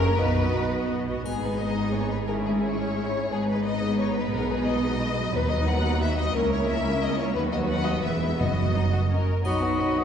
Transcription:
0.00 0.14 F#1 medium
0.00 0.15 F#2 medium
0.00 0.21 A#3 medium
0.00 0.18 C#4 soft
0.00 0.18 G4 soft
0.00 0.18 A#4 medium
0.00 0.18 E5 soft
0.18 0.50 B1 medium
0.18 0.51 B2 medium
0.18 0.35 B3 soft
0.18 1.09 D#4 medium
0.18 0.35 F#4 soft
0.18 0.91 B4 medium
0.18 0.35 D#5 soft
0.36 0.71 B3 soft
0.36 0.71 F#4 soft
0.36 0.71 D#5 soft
0.54 0.86 B1 soft
0.54 0.86 B2 soft
0.72 1.06 B3 soft
0.72 1.07 F#4 soft
0.72 1.07 D#5 soft
0.90 1.22 B1 soft
0.90 1.22 B2 soft
1.08 1.25 B3 soft
1.08 1.25 F#4 soft
1.08 1.26 D#5 soft
1.25 3.28 G#1 soft
1.25 3.27 G#2 soft
1.25 3.28 G#3 soft
1.25 2.24 B3 soft
1.25 2.24 D#4 soft
1.25 3.28 G#4 soft
1.25 1.42 G#4 medium
1.25 triangle soft
1.44 1.60 B4 medium
1.61 1.94 D#5 medium
1.94 2.11 C#5 medium
2.11 2.18 B4 medium
2.28 3.28 C#4 soft
2.28 3.29 E4 soft
2.28 2.35 A#4 medium
2.46 2.53 G#4 soft
2.62 3.30 C#5 medium
3.31 4.31 G#1 soft
3.31 4.31 G#2 soft
3.31 5.30 G#3 soft
3.31 5.30 B3 soft
3.31 5.31 D#4 soft
3.31 3.49 G#4 medium
3.31 5.31 B4 soft
3.49 3.65 B4 medium
3.66 3.99 D#5 medium
4.00 4.16 C#5 medium
4.16 4.33 B4 medium
4.32 5.32 B1 medium
4.32 4.81 B2 medium
4.32 5.33 B2 medium
4.32 4.50 A#4 medium
4.51 4.68 G#4 medium
4.67 5.34 D#5 medium
5.34 6.35 D#2 medium
5.34 6.31 F#3 medium
5.34 6.31 B3 medium
5.34 6.32 D#4 medium
5.34 5.51 B4 medium
5.34 6.32 B4 soft
5.50 5.67 D#5 medium
5.67 6.01 F#5 medium
6.02 6.18 E5 medium
6.19 6.35 D#5 medium
6.35 7.34 C#2 medium
6.35 7.35 C#2 medium
6.35 7.32 A#3 medium
6.35 7.32 C#4 medium
6.35 7.32 E4 medium
6.35 6.52 A#4 medium
6.35 7.33 A#4 medium
6.52 6.69 C#5 medium
6.70 7.02 E5 medium
7.03 7.20 D#5 medium
7.19 7.36 C#5 medium
7.35 8.05 D#2 medium
7.35 8.01 F#3 soft
7.35 9.06 B3 medium
7.35 8.00 F#4 soft
7.35 7.42 B4 medium
7.35 8.67 B4 medium
7.52 7.59 D#5 medium
7.69 7.86 F#5 medium
7.86 8.04 D#5 medium
8.04 8.39 E1 medium
8.04 8.38 E2 soft
8.04 8.37 G#3 soft
8.04 8.37 E4 soft
8.04 8.38 E5 medium
8.39 9.27 F#1 soft
8.39 9.28 F#2 soft
8.39 8.89 F#2 medium
8.39 9.24 F#3 soft
8.39 8.69 F#4 soft
8.39 9.27 D#5 medium
8.76 8.82 D#4 soft
8.94 9.00 F#4 soft
9.10 9.26 C#4 soft
9.10 9.44 A#4 soft
9.44 9.74 B1 soft
9.44 9.74 B2 soft
9.44 10.04 F#3 soft
9.44 9.62 F#3 soft
9.44 10.04 D#4 soft
9.44 9.61 D#4 soft
9.44 10.04 F#4 medium
9.44 9.61 D#5 soft
9.44 9.62 D#5 soft
9.44 9.60 F#5 soft
9.44 9.61 B5 soft
9.44 triangle soft
9.61 9.79 F#3 soft
9.61 9.80 B3 soft
9.61 9.80 B4 soft
9.61 9.80 D#5 soft
9.61 9.78 F#5 soft
9.61 9.80 F#5 soft
9.79 10.04 B1 soft
9.79 10.04 B2 soft
9.79 9.96 F#3 soft
9.79 9.96 D#4 soft
9.79 9.97 D#5 soft
9.79 9.96 F#5 soft
9.79 9.97 B5 soft
9.96 10.04 F#3 soft
9.96 10.04 B3 soft
9.96 10.04 B4 soft
9.96 10.04 D#5 soft
9.96 10.04 F#5 soft

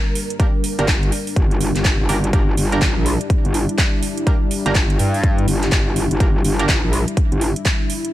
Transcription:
0.00 8.13 G3 medium
0.00 8.13 D4 medium
0.00 2.32 A#4 medium
0.15 open hi-hat loud
0.30 closed hi-hat soft
0.40 0.47 A#3 medium
0.40 0.47 D4 medium
0.40 0.47 G4 medium
0.40 0.47 A#4 medium
0.40 kick loud
0.40 closed hi-hat medium
0.64 open hi-hat loud
0.79 1.11 G1 medium
0.79 0.86 A#3 medium
0.79 0.86 D4 medium
0.79 0.86 G4 medium
0.79 0.86 A#4 loud
0.79 closed hi-hat soft
0.88 kick loud
0.88 clap loud
0.88 closed hi-hat medium
1.03 closed hi-hat soft
1.12 open hi-hat loud
1.27 open hi-hat medium
1.36 1.73 G1 medium
1.36 kick loud
1.36 closed hi-hat medium
1.51 closed hi-hat soft
1.61 open hi-hat loud
1.76 1.97 G1 loud
1.76 clap soft
1.76 closed hi-hat soft
1.85 kick loud
1.85 clap loud
1.85 closed hi-hat medium
2.00 2.08 G1 loud
2.09 2.32 G1 loud
2.09 2.16 A#3 medium
2.09 2.16 D4 medium
2.09 2.16 G4 medium
2.09 2.16 A#4 loud
2.09 open hi-hat loud
2.24 closed hi-hat soft
2.33 2.56 G1 loud
2.33 2.41 A#3 medium
2.33 2.41 D4 medium
2.33 8.13 E4 medium
2.33 2.41 G4 medium
2.33 2.41 A#4 medium
2.33 kick loud
2.33 closed hi-hat medium
2.57 2.94 G1 loud
2.57 open hi-hat loud
2.72 2.80 A#3 medium
2.72 2.80 D4 medium
2.72 2.80 G4 medium
2.72 2.80 A#4 loud
2.72 closed hi-hat soft
2.82 kick loud
2.82 clap loud
2.82 closed hi-hat medium
2.97 3.18 A#1 medium
3.06 open hi-hat loud
3.21 closed hi-hat soft
3.30 kick loud
3.30 closed hi-hat medium
3.45 3.67 G1 loud
3.45 closed hi-hat soft
3.54 open hi-hat loud
3.69 closed hi-hat soft
3.78 kick loud
3.78 clap loud
3.78 closed hi-hat medium
4.03 open hi-hat loud
4.18 closed hi-hat soft
4.27 4.34 A#3 medium
4.27 4.34 D4 medium
4.27 4.34 G4 medium
4.27 4.34 A#4 medium
4.27 kick loud
4.27 closed hi-hat medium
4.51 open hi-hat loud
4.66 4.98 G1 medium
4.66 4.73 A#3 medium
4.66 4.73 D4 medium
4.66 4.73 G4 medium
4.66 4.73 A#4 loud
4.66 closed hi-hat medium
4.75 kick loud
4.75 clap loud
4.75 closed hi-hat medium
4.90 closed hi-hat soft
4.99 5.46 G2 medium
4.99 open hi-hat loud
5.14 open hi-hat medium
5.24 kick loud
5.24 closed hi-hat medium
5.38 closed hi-hat soft
5.48 5.70 G1 medium
5.48 open hi-hat loud
5.63 clap soft
5.63 closed hi-hat soft
5.72 6.09 G1 medium
5.72 kick loud
5.72 clap loud
5.72 closed hi-hat medium
5.96 open hi-hat loud
6.11 6.19 G1 medium
6.11 closed hi-hat medium
6.20 6.43 G1 medium
6.20 6.28 A#3 medium
6.20 6.28 D4 medium
6.20 6.28 G4 medium
6.20 6.28 A#4 medium
6.20 kick loud
6.20 closed hi-hat medium
6.45 6.81 G1 loud
6.45 open hi-hat loud
6.59 6.67 A#3 medium
6.59 6.67 D4 medium
6.59 6.67 G4 medium
6.59 6.67 A#4 loud
6.59 closed hi-hat medium
6.69 kick loud
6.69 clap loud
6.69 closed hi-hat medium
6.84 7.05 A#1 medium
6.93 open hi-hat loud
7.08 closed hi-hat medium
7.17 kick loud
7.17 closed hi-hat medium
7.32 7.54 G1 medium
7.32 closed hi-hat soft
7.41 open hi-hat loud
7.56 closed hi-hat medium
7.65 kick loud
7.65 clap loud
7.65 closed hi-hat medium
7.90 open hi-hat loud
8.05 closed hi-hat medium

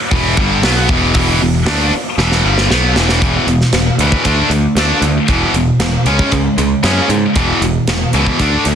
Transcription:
0.11 0.35 E1 loud
0.11 0.36 E2 medium
0.11 0.37 B2 loud
0.11 0.37 E3 loud
0.11 kick loud
0.37 0.61 G1 loud
0.37 0.63 G2 medium
0.37 0.63 D3 loud
0.37 0.63 G3 loud
0.37 kick loud
0.63 0.87 B1 medium
0.63 0.88 B2 medium
0.63 0.88 F#3 loud
0.63 0.89 B3 loud
0.63 snare loud
0.63 open hi-hat medium
0.89 1.13 E1 medium
0.89 1.14 E2 medium
0.89 1.14 B2 medium
0.89 1.15 E3 medium
0.89 kick loud
1.14 1.39 E1 medium
1.14 1.40 E2 medium
1.14 1.40 B2 medium
1.14 1.40 E3 medium
1.14 kick loud
1.14 open hi-hat medium
1.41 1.65 E1 medium
1.41 1.62 E2 medium
1.41 1.62 B2 medium
1.66 1.90 D2 medium
1.66 1.92 D3 medium
1.66 1.92 A3 medium
1.66 1.92 D4 loud
1.66 snare loud
1.66 open hi-hat medium
1.93 muted distorted electric guitar stroke medium
2.18 2.42 E1 medium
2.18 2.43 E2 medium
2.18 2.44 B2 medium
2.18 2.44 E3 loud
2.18 snare medium
2.32 snare medium
2.44 2.68 G1 medium
2.44 2.69 G2 medium
2.44 2.69 D3 medium
2.44 2.70 G3 loud
2.58 snare medium
2.70 2.94 B1 medium
2.70 2.95 B2 medium
2.70 2.96 F#3 medium
2.70 2.96 B3 loud
2.70 snare medium
2.95 3.20 E1 medium
2.95 3.20 E2 medium
2.95 3.21 B2 medium
2.95 3.21 E3 medium
2.95 snare loud
3.09 snare medium
3.22 3.37 E1 medium
3.22 3.46 E2 medium
3.22 3.46 B2 medium
3.22 3.47 E3 medium
3.22 kick loud
3.22 closed hi-hat medium
3.47 3.63 E1 medium
3.47 3.71 E2 medium
3.47 3.71 B2 medium
3.47 closed hi-hat medium
3.61 snare soft
3.73 3.89 E1 medium
3.73 3.97 E2 medium
3.73 3.97 B2 medium
3.73 snare loud
3.73 closed hi-hat medium
3.98 4.14 D2 medium
3.98 4.24 E2 medium
3.98 4.25 B2 medium
3.98 4.25 E3 medium
3.98 closed hi-hat medium
4.12 kick medium
4.25 4.41 D2 medium
4.25 4.50 D3 medium
4.25 4.50 A3 medium
4.25 4.50 D4 medium
4.25 kick medium
4.25 closed hi-hat medium
4.50 4.66 D2 medium
4.50 4.75 D3 medium
4.50 4.75 A3 medium
4.50 closed hi-hat medium
4.75 4.92 D2 medium
4.75 5.02 D3 medium
4.75 5.02 A3 medium
4.75 5.02 D4 medium
4.75 snare loud
4.75 closed hi-hat medium
5.02 5.18 D2 medium
5.02 5.27 D3 medium
5.02 5.27 A3 medium
5.02 closed hi-hat medium
5.28 5.44 E1 medium
5.28 5.53 E2 medium
5.28 5.54 B2 medium
5.28 5.54 E3 medium
5.28 kick loud
5.28 closed hi-hat medium
5.54 5.70 E1 medium
5.54 5.79 E2 medium
5.54 5.79 B2 medium
5.54 closed hi-hat medium
5.80 5.96 E1 medium
5.80 6.04 E2 medium
5.80 6.04 B2 medium
5.80 snare loud
5.80 closed hi-hat medium
6.05 6.21 C#2 medium
6.05 6.31 C#3 medium
6.05 6.31 G#3 medium
6.05 6.31 C#4 loud
6.05 closed hi-hat medium
6.19 kick medium
6.32 6.48 C#2 medium
6.32 6.56 C#3 medium
6.32 6.56 G#3 medium
6.32 kick medium
6.32 closed hi-hat medium
6.57 6.73 C#2 medium
6.57 6.82 C#3 medium
6.57 6.82 G#3 medium
6.57 closed hi-hat medium
6.83 6.99 F#2 medium
6.83 7.08 C#3 medium
6.83 7.09 G#3 medium
6.83 7.09 C#4 loud
6.83 snare loud
6.83 closed hi-hat medium
7.09 7.25 G#2 medium
7.09 7.34 C#3 medium
7.09 7.34 G#3 medium
7.09 closed hi-hat medium
7.35 7.51 E1 medium
7.35 7.61 E2 medium
7.35 7.61 B2 medium
7.35 7.61 E3 medium
7.35 kick loud
7.35 closed hi-hat medium
7.61 7.77 E1 medium
7.61 7.86 E2 medium
7.61 7.86 B2 medium
7.61 closed hi-hat medium
7.88 8.03 E1 medium
7.88 8.12 E2 medium
7.88 8.12 B2 medium
7.88 snare loud
7.88 closed hi-hat medium
8.13 8.29 C#2 medium
8.13 8.38 E2 medium
8.13 8.39 B2 medium
8.13 8.39 E3 loud
8.13 closed hi-hat medium
8.26 kick medium
8.39 8.55 D2 medium
8.39 8.65 D3 medium
8.39 8.65 A3 medium
8.39 8.65 D4 medium
8.39 kick medium
8.39 closed hi-hat medium
8.65 8.75 D2 medium
8.65 8.75 D3 medium
8.65 8.75 A3 medium
8.65 closed hi-hat medium

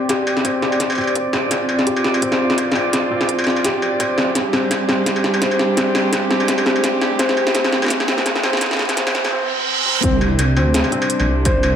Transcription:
0.00 0.45 C4 medium
0.00 4.31 C4 medium
0.00 1.49 G4 medium
0.00 4.32 D5 medium
0.00 riser medium
0.09 0.43 G4 medium
0.09 kick medium
0.09 snare soft
0.09 closed hi-hat medium
0.09 struck metal medium
0.27 struck metal medium
0.37 snare soft
0.45 0.56 C4 medium
0.45 kick medium
0.45 closed hi-hat medium
0.45 struck metal soft
0.62 snare medium
0.72 struck metal medium
0.80 kick medium
0.80 snare medium
0.80 closed hi-hat medium
0.90 struck metal medium
0.92 struck metal medium
0.95 struck metal soft
0.98 1.09 C4 medium
0.98 struck metal soft
1.01 struck metal soft
1.04 struck metal soft
1.07 struck metal soft
1.16 kick loud
1.16 closed hi-hat medium
1.33 1.44 C4 medium
1.33 snare medium
1.33 struck metal soft
1.51 4.32 F4 medium
1.51 kick loud
1.51 snare medium
1.51 closed hi-hat medium
1.51 struck metal medium
1.69 struck metal soft
1.79 snare soft
1.87 2.21 G4 medium
1.87 kick medium
1.87 closed hi-hat medium
1.97 struck metal soft
2.04 snare medium
2.14 struck metal medium
2.22 2.33 C4 medium
2.22 kick medium
2.22 closed hi-hat medium
2.32 snare medium
2.32 struck metal soft
2.50 snare medium
2.58 kick medium
2.58 closed hi-hat medium
2.58 struck metal soft
2.72 2.86 C4 medium
2.72 snare medium
2.72 struck metal medium
2.93 kick loud
2.93 snare medium
2.93 closed hi-hat medium
2.93 struck metal soft
3.11 3.22 C4 medium
3.21 snare medium
3.21 struck metal soft
3.29 kick loud
3.29 closed hi-hat medium
3.39 struck metal medium
3.44 snare medium
3.44 struck metal medium
3.50 struck metal soft
3.56 struck metal soft
3.64 3.98 G4 medium
3.64 kick medium
3.64 snare medium
3.64 closed hi-hat medium
3.82 struck metal soft
4.00 4.11 C4 medium
4.00 kick loud
4.00 closed hi-hat medium
4.00 struck metal medium
4.18 snare medium
4.18 struck metal soft
4.35 9.29 G3 medium
4.35 7.17 D4 medium
4.35 9.29 G4 medium
4.35 kick loud
4.35 snare medium
4.35 closed hi-hat medium
4.53 4.64 C4 medium
4.53 snare medium
4.53 struck metal soft
4.71 kick loud
4.71 snare medium
4.71 closed hi-hat medium
4.71 struck metal medium
4.89 5.00 C4 medium
4.89 snare medium
4.89 struck metal soft
5.06 kick medium
5.06 snare medium
5.06 closed hi-hat medium
5.16 struck metal soft
5.24 snare medium
5.34 struck metal medium
5.42 5.76 C5 medium
5.42 kick loud
5.42 snare medium
5.42 closed hi-hat medium
5.51 struck metal soft
5.59 snare medium
5.77 5.88 C4 medium
5.77 kick loud
5.77 snare medium
5.77 closed hi-hat medium
5.77 struck metal soft
5.95 snare medium
5.95 struck metal medium
6.13 kick loud
6.13 snare medium
6.13 closed hi-hat medium
6.13 struck metal medium
6.31 6.41 C4 medium
6.31 snare medium
6.40 struck metal soft
6.48 kick loud
6.48 snare medium
6.48 closed hi-hat medium
6.58 struck metal medium
6.66 6.77 C4 medium
6.66 snare medium
6.76 struck metal soft
6.84 kick loud
6.84 snare medium
6.84 closed hi-hat medium
7.01 snare medium
7.01 struck metal soft
7.19 9.30 C4 medium
7.19 7.53 C5 medium
7.19 kick loud
7.19 snare medium
7.19 closed hi-hat medium
7.19 struck metal medium
7.29 snare medium
7.37 struck metal medium
7.47 snare medium
7.55 7.66 C4 medium
7.55 kick loud
7.55 snare loud
7.55 closed hi-hat medium
7.64 snare medium
7.64 struck metal medium
7.72 snare medium
7.82 snare soft
7.82 struck metal medium
7.84 snare soft
7.86 snare medium
7.88 snare medium
7.90 kick loud
7.90 snare loud
7.90 closed hi-hat medium
8.00 snare medium
8.00 struck metal medium
8.08 8.19 C4 medium
8.08 snare medium
8.18 snare medium
8.26 kick loud
8.26 snare loud
8.26 closed hi-hat medium
8.26 struck metal medium
8.36 snare medium
8.43 8.55 C4 medium
8.43 snare loud
8.43 struck metal medium
8.53 snare medium
8.57 snare medium
8.61 kick loud
8.61 snare loud
8.61 closed hi-hat medium
8.61 struck metal medium
8.66 snare soft
8.71 snare medium
8.73 snare medium
8.77 snare medium
8.79 snare loud
8.83 snare soft
8.85 snare soft
8.89 snare medium
8.89 closed hi-hat soft
8.89 struck metal medium
8.97 9.31 C5 medium
8.97 kick loud
8.97 snare loud
8.97 closed hi-hat medium
9.07 snare medium
9.07 struck metal medium
9.15 snare loud
9.25 snare loud
9.25 struck metal medium
9.26 struck metal soft
9.28 struck metal soft
9.31 9.43 C4 medium
9.31 reverse cymbal medium
9.31 struck metal soft
9.86 9.97 C4 medium
10.03 10.58 C2 loud
10.03 11.76 C3 medium
10.03 11.76 G3 medium
10.03 10.14 C4 medium
10.03 11.76 D4 medium
10.03 kick loud
10.03 closed hi-hat medium
10.03 impact medium
10.21 struck metal medium
10.39 closed hi-hat medium
10.39 struck metal medium
10.57 10.83 D2 loud
10.57 10.68 C4 medium
10.57 struck metal medium
10.74 snare loud
10.74 closed hi-hat medium
10.84 struck metal medium
10.92 11.03 C4 medium
10.92 closed hi-hat soft
11.02 struck metal medium
11.10 closed hi-hat medium
11.20 11.29 A#1 medium
11.20 struck metal medium
11.28 11.76 C2 loud
11.45 11.76 C5 medium
11.45 kick loud
11.45 closed hi-hat medium
11.45 struck metal medium
11.63 struck metal medium

